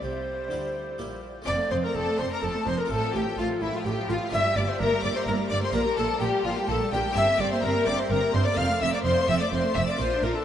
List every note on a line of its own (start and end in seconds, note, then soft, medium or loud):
0.01 0.47 C2 medium
0.01 0.47 C3 medium
0.01 0.46 C3 soft
0.01 1.24 G3 medium
0.01 1.25 E4 soft
0.01 1.23 C5 medium
0.01 1.21 C5 medium
0.50 0.96 D2 medium
0.50 0.96 D3 soft
0.50 0.95 D3 soft
0.50 0.86 E4 soft
0.50 0.86 G4 soft
0.98 1.44 A#1 medium
0.98 1.43 A#2 soft
0.98 1.44 A#2 soft
0.98 1.34 E4 soft
0.98 1.34 G4 soft
1.42 2.84 A3 soft
1.42 2.85 C4 medium
1.42 2.85 F4 medium
1.42 1.54 D6 medium
1.46 1.56 F1 medium
1.46 1.69 F2 medium
1.46 1.55 F2 medium
1.46 1.59 C4 medium
1.46 1.54 D5 loud
1.46 1.73 D5 loud
1.58 1.71 A3 medium
1.70 1.79 F1 medium
1.70 1.93 F2 medium
1.70 1.79 F2 medium
1.70 1.84 C4 medium
1.70 1.85 C5 medium
1.70 1.77 C5 medium
1.70 1.75 C6 medium
1.84 1.96 A3 medium
1.84 1.96 A#4 medium
1.84 1.95 A#5 medium
1.95 2.03 F1 medium
1.95 2.03 F2 medium
1.95 2.17 F2 medium
1.95 2.07 C4 medium
1.95 2.21 A4 medium
1.95 2.19 A4 medium
1.95 2.19 A5 medium
2.08 2.20 A3 medium
2.18 2.27 F1 medium
2.18 2.40 F2 medium
2.18 2.27 F2 medium
2.18 2.31 C4 medium
2.18 2.30 C5 medium
2.18 2.32 C5 medium
2.18 2.31 C6 loud
2.31 2.43 A3 medium
2.31 2.43 A#4 medium
2.31 2.43 A#5 medium
2.41 2.51 F1 medium
2.41 2.64 F2 medium
2.41 2.50 F2 medium
2.41 2.54 C4 medium
2.41 2.66 A4 medium
2.41 2.67 A4 medium
2.41 2.66 A5 loud
2.55 2.67 A3 medium
2.66 2.75 F1 medium
2.66 2.88 F2 medium
2.66 2.74 F2 medium
2.66 2.79 C4 medium
2.66 2.80 C5 medium
2.66 2.79 C5 medium
2.66 2.79 C6 medium
2.78 2.90 A3 medium
2.78 2.92 A#4 medium
2.78 2.91 A#4 medium
2.78 2.91 A#5 medium
2.86 4.26 C4 medium
2.86 4.27 F4 medium
2.90 2.99 A1 medium
2.90 2.98 A2 medium
2.90 3.12 A2 medium
2.90 3.02 A3 medium
2.90 3.14 A4 loud
2.90 3.15 A4 medium
2.90 3.14 A5 medium
3.03 3.14 F3 medium
3.14 3.23 A1 medium
3.14 3.22 A2 medium
3.14 3.36 A2 medium
3.14 3.27 A3 medium
3.14 3.38 G4 medium
3.14 3.38 G5 medium
3.26 3.38 F3 medium
3.38 3.46 A1 medium
3.38 3.46 A2 medium
3.38 3.59 A2 medium
3.38 3.49 A3 medium
3.38 3.63 F4 medium
3.38 3.47 F4 medium
3.38 3.46 F5 loud
3.51 3.62 F3 medium
3.61 3.70 A1 medium
3.61 3.83 A2 medium
3.61 3.69 A2 medium
3.61 3.73 A3 medium
3.61 3.73 E4 medium
3.61 3.74 E4 medium
3.61 3.74 E5 medium
3.74 3.86 F3 medium
3.74 3.79 F4 medium
3.74 3.86 F5 medium
3.85 3.93 A1 medium
3.85 3.93 A2 medium
3.85 4.07 A2 medium
3.85 3.97 A3 medium
3.85 3.91 G4 medium
3.85 4.09 G4 medium
3.85 4.09 G5 medium
3.98 4.09 F3 medium
4.08 4.16 A1 medium
4.08 4.17 A2 medium
4.08 4.31 A2 medium
4.08 4.21 A3 medium
4.08 4.33 F4 medium
4.08 4.16 F4 medium
4.08 4.33 F5 medium
4.21 4.33 F3 medium
4.29 4.40 G1 medium
4.29 5.68 A#3 medium
4.29 4.44 A#3 medium
4.29 5.69 D4 medium
4.29 5.70 G4 medium
4.33 4.41 G2 medium
4.33 4.55 G2 medium
4.33 4.56 E5 loud
4.33 4.58 E5 loud
4.33 4.57 E6 medium
4.45 4.56 G3 medium
4.56 4.64 G1 medium
4.56 4.64 G2 medium
4.56 4.78 G2 medium
4.56 4.68 A#3 medium
4.56 4.61 D5 medium
4.56 4.70 D5 medium
4.56 4.68 D6 medium
4.68 4.80 G3 medium
4.68 4.81 C5 medium
4.68 4.73 C5 medium
4.68 4.80 C6 medium
4.80 4.88 G1 medium
4.80 4.88 G2 medium
4.80 5.02 G2 medium
4.80 4.92 A#3 medium
4.80 5.03 A#4 medium
4.80 5.03 A#4 loud
4.80 5.03 A#5 loud
4.91 5.03 G3 medium
5.01 5.11 G1 medium
5.01 5.12 G2 medium
5.01 5.15 A#3 medium
5.01 5.08 D5 medium
5.01 5.09 D5 medium
5.01 5.14 D6 loud
5.06 5.26 G2 medium
5.14 5.27 G3 medium
5.14 5.19 C5 medium
5.14 5.27 C5 medium
5.14 5.27 C6 loud
5.25 5.35 G1 medium
5.25 5.49 G2 medium
5.25 5.36 G2 medium
5.25 5.38 A#3 medium
5.25 5.34 A#4 medium
5.25 5.33 A#4 loud
5.25 5.50 A#5 loud
5.38 5.50 G3 medium
5.49 5.58 G1 medium
5.49 5.72 G2 medium
5.49 5.59 G2 medium
5.49 5.63 A#3 medium
5.49 5.62 D5 medium
5.49 5.61 D6 loud
5.62 5.74 G3 medium
5.62 5.74 C5 medium
5.62 5.74 C6 loud
5.70 5.81 A#1 medium
5.70 5.95 A#2 medium
5.70 7.10 A#3 medium
5.70 5.85 A#3 medium
5.70 7.10 D4 medium
5.70 7.11 G4 medium
5.70 5.97 A#5 loud
5.74 5.82 A#2 medium
5.74 5.97 A#4 loud
5.74 5.80 A#4 loud
5.86 5.98 G3 medium
5.96 6.05 A#1 medium
5.96 6.06 A#2 medium
5.96 6.19 A#2 medium
5.96 6.10 A#3 medium
5.96 6.21 A4 medium
5.96 6.23 A4 medium
5.96 6.20 A5 loud
6.11 6.22 G3 medium
6.20 6.28 A#1 medium
6.20 6.29 A#2 medium
6.20 6.43 A#2 medium
6.20 6.33 A#3 medium
6.20 6.45 G4 loud
6.20 6.44 G4 medium
6.20 6.28 G5 loud
6.33 6.45 G3 medium
6.45 6.53 A#1 medium
6.45 6.66 A#2 medium
6.45 6.53 A#2 medium
6.45 6.58 A#3 medium
6.45 6.57 F4 medium
6.45 6.50 F4 medium
6.45 6.56 F5 medium
6.57 6.69 G3 medium
6.57 6.69 G4 medium
6.57 6.69 G5 medium
6.67 6.76 A#1 medium
6.67 6.89 A#2 medium
6.67 6.76 A#2 medium
6.67 6.80 A#3 medium
6.67 6.76 A4 loud
6.67 6.92 A4 loud
6.67 6.91 A5 loud
6.81 6.92 G3 medium
6.92 7.00 A#1 medium
6.92 7.00 A#2 medium
6.92 7.13 A#2 medium
6.92 7.04 A#3 medium
6.92 7.16 G4 loud
6.92 7.00 G4 medium
6.92 7.15 G5 loud
7.04 7.16 G3 medium
7.11 7.22 G2 medium
7.11 8.51 A#3 medium
7.11 8.51 C4 medium
7.11 8.52 G4 medium
7.11 7.39 E6 loud
7.15 7.23 G1 medium
7.15 7.37 G2 medium
7.15 7.27 C4 medium
7.15 7.42 E5 loud
7.15 7.40 E5 loud
7.28 7.40 A#3 medium
7.38 7.47 G1 medium
7.38 7.47 G2 medium
7.38 7.60 G2 medium
7.38 7.51 C4 medium
7.38 7.51 D5 loud
7.38 7.52 D5 medium
7.38 7.50 D6 loud
7.50 7.64 A#3 medium
7.50 7.63 C5 medium
7.50 7.66 C5 medium
7.50 7.62 C6 medium
7.62 7.71 G1 medium
7.62 7.84 G2 medium
7.62 7.70 G2 medium
7.62 7.74 C4 medium
7.62 7.86 A#4 loud
7.62 7.89 A#4 medium
7.62 7.86 A#5 loud
7.75 7.86 A#3 medium
7.85 7.95 G1 medium
7.85 8.07 G2 medium
7.85 7.93 G2 medium
7.85 7.99 C4 medium
7.85 7.98 D5 loud
7.85 8.01 D5 loud
7.85 7.97 D6 loud
7.98 8.10 A#3 medium
7.98 8.03 C5 medium
7.98 8.13 C5 medium
7.98 8.10 C6 medium
8.09 8.18 G1 medium
8.09 8.17 G2 medium
8.09 8.31 G2 medium
8.09 8.22 C4 medium
8.09 8.33 A#4 loud
8.09 8.34 A#4 loud
8.09 8.33 A#5 loud
8.22 8.34 A#3 medium
8.32 8.42 G1 medium
8.32 8.54 G2 medium
8.32 8.41 G2 medium
8.32 8.46 C4 medium
8.32 8.45 C5 loud
8.32 8.45 C6 loud
8.45 8.58 A#3 medium
8.45 8.59 D5 loud
8.45 8.58 D5 medium
8.45 8.57 D6 loud
8.52 8.64 F2 medium
8.52 9.93 A3 medium
8.52 9.94 C4 medium
8.52 9.94 A4 medium
8.57 8.65 F1 medium
8.57 8.78 F2 medium
8.57 8.69 C4 medium
8.57 8.84 F5 loud
8.57 8.81 F5 loud
8.57 8.81 F6 loud
8.69 8.81 A3 medium
8.79 8.90 F1 medium
8.79 8.87 F2 medium
8.79 9.02 F2 medium
8.79 8.93 C4 medium
8.79 8.93 E5 medium
8.79 8.93 E5 loud
8.79 8.92 E6 loud
8.93 9.05 A3 medium
8.93 8.98 D5 medium
8.93 9.05 D5 medium
8.93 8.98 D6 medium
9.03 9.13 F1 medium
9.03 9.11 F2 medium
9.03 9.26 F2 medium
9.03 9.16 C4 medium
9.03 9.28 C5 loud
9.03 9.28 C5 medium
9.03 9.27 C6 loud
9.18 9.29 A3 medium
9.27 9.37 F1 medium
9.27 9.35 F2 medium
9.27 9.49 F2 medium
9.27 9.41 C4 medium
9.27 9.40 E5 loud
9.27 9.35 E5 loud
9.27 9.40 E6 loud
9.40 9.52 A3 medium
9.40 9.51 D5 medium
9.40 9.46 D5 medium
9.40 9.53 D6 medium
9.51 9.61 F1 medium
9.51 9.73 F2 medium
9.51 9.59 F2 medium
9.51 9.64 C4 medium
9.51 9.60 C5 medium
9.51 9.76 C5 loud
9.51 9.76 C6 loud
9.65 9.76 A3 medium
9.75 9.84 F1 medium
9.75 9.83 F2 medium
9.75 9.97 F2 medium
9.75 9.88 C4 medium
9.75 9.80 E5 loud
9.75 9.82 E5 medium
9.75 9.88 E6 loud
9.88 10.00 A3 medium
9.88 9.99 D5 medium
9.88 10.00 D5 medium
9.88 10.00 D6 medium
9.95 10.06 A#2 medium
9.95 10.43 A#3 medium
9.95 10.44 D4 medium
9.95 10.45 F4 medium
9.95 10.23 C5 loud
9.99 10.08 A#1 medium
9.99 10.21 A#2 medium
9.99 10.11 F4 medium
9.99 10.25 C5 loud
9.99 10.24 C6 medium
10.12 10.24 D4 medium
10.22 10.31 A#1 medium
10.22 10.30 A#2 medium
10.22 10.45 A#2 medium
10.22 10.36 F4 medium
10.22 10.35 A#4 medium
10.22 10.37 A#4 medium
10.22 10.35 A#5 medium
10.34 10.45 D4 medium
10.34 10.45 A4 medium
10.34 10.45 A5 medium